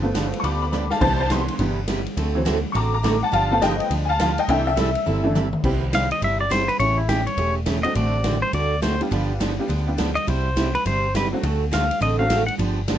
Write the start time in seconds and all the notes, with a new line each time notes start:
Already playing: G1
0.02 F3 A3 B3
0.14 D3 F3 B3 D4 G4, kick, snare, hi-hat pedal, ride
0.33 ride
0.40 D2 B5 C#6, kick
0.44 D3 F3 B3 D4 G4 D6, ride
0.62 B5 D6
0.72 D3 F3 B3 D4 G4 B5 D6, hi-hat pedal, high tom
0.90 F5 A5, snare
1.00 C2 C3 D3 E3 G3 B3 E4 G4 C5 A5, kick, crash
1.20 C5 A5
1.30 C3 G3 B3 E4 G4 C6, kick, snare, hi-hat pedal, ride
1.48 ride
1.59 G1 C3 D3 E3 G3 B3 E4 G4, kick, ride
1.88 C3 G3 B3 E4 G4, kick, snare, hi-hat pedal, ride
2.06 ride
2.17 D2 D3 A3 C4 F#4 A4, kick, ride
2.35 E3 F#3 C4
2.45 D3 A3 C4 F#4 A4, kick, snare, hi-hat pedal, ride
2.72 A1 D3 A3 C4 F#4 A4 A#5 C#6, kick, ride
2.76 D6
2.94 A#5 D6
3.03 D3 A3 C4 F#4 A4 A#5 D6, kick, snare, hi-hat pedal, ride
3.23 F#5 A5
3.32 G1 D3 F3 B3 D4 G4 F5 A5, kick, ride
3.51 F3 A3 B3 F5 A5
3.62 D3 F3 B3 D4 G4 D#5 G5, kick, snare, hi-hat pedal, ride
3.80 ride
3.91 D2 D3 F3 B3 D4 G4, kick, ride
4.05 F5 G#5
4.10 A5
4.19 D3 F3 B3 D4 G4 F5 A5, kick, snare, hi-hat pedal, ride
4.38 D#5 G5, ride
4.48 C2 C3 E3 G3 A3 C4 D4 E4 A4 E5 G5, kick, ride
4.67 E5
4.77 C3 E3 G3 C4 E4 A4, kick, snare, hi-hat pedal, ride
4.95 ride
5.06 G1 C3 E3 G3 C4 E4 A4, mid tom
5.24 E3 A3 D4
5.35 C3 E3 G3 C4 E4 A4, hi-hat pedal, mid tom
5.53 mid tom
5.64 C2 C3 G3 B3 C4 E4 G4, kick, crash
5.93 C3 G3 B3 E4 G4 F5, kick, snare, hi-hat pedal, ride
6.11 D#5, ride
6.22 G1 C3 G3 B3 E4 G4 E5, kick, ride
6.41 D5
6.50 C3 G3 B3 E4 G4 C5, kick, snare, hi-hat pedal, ride
6.68 B4, ride
6.79 A1 C#3 E3 A3 C#4 G4 C#5, kick, ride
6.98 E4
7.09 C#3 E3 A3 C#4 G4, kick, snare, hi-hat pedal, ride
7.27 C#5, ride
7.37 E1 C#3 E3 A3 C#4 G4, kick, ride
7.66 C#3 E3 A3 C#4 G4, kick, snare, hi-hat pedal, ride
7.83 F#3 A3 C4 D4 F#4 D#5, ride
7.95 A1 D3 A3 C4 F#4 A4 D5, kick, ride
8.24 D3 A3 C4 F#4 A4, kick, snare, hi-hat pedal, ride
8.42 C5
8.53 D2 D3 A3 C4 F#4 A4 D5, kick, ride
8.82 D3 A3 C4 F#4 A4 C5, kick, snare, hi-hat pedal, ride
9.01 G3 B3 D4 F4 G4, ride
9.11 G1 D3 F3 B3 D4 G4, kick, ride
9.40 D3 F3 B3 D4 G4, kick, snare, hi-hat pedal, ride
9.59 G3 B3 D4 F4 G4
9.68 D2 D3 F3 B3 D4 G4, kick, ride
9.87 G3 B3 D4 F4 G4
9.98 D3 F3 B3 D4 G4, kick, snare, hi-hat pedal, ride
10.15 D#5, ride
10.27 C2 C3 G3 B3 E4 G4 C5, kick, ride
10.56 C3 G3 B3 E4 G4, kick, snare, hi-hat pedal, ride
10.75 B4, ride
10.85 G1 C3 G3 B3 E4 G4 C5, kick, ride
11.15 C3 G3 B3 E4 G4 B4, kick, snare, hi-hat pedal, ride
11.32 F#3 A3 C4 D4 F#4
11.43 D2 D3 A3 C4 F#4 A4, kick, ride
11.71 D3 A3 C4 F#4 A4 F5, kick, snare, hi-hat pedal, ride
11.91 ride
12.00 A1 D3 A3 C4 F#4 A4 D#5, kick, ride
12.19 F#3 A3 C4 D4 F#4 F5
12.29 D3 A3 C4 F#4 A4, kick, snare, hi-hat pedal, ride
12.46 F#5, ride
12.58 G1 D3 F3 B3 D4 G4, kick, ride
12.88 D3 F3 B3 D4 G4, kick, snare, hi-hat pedal, ride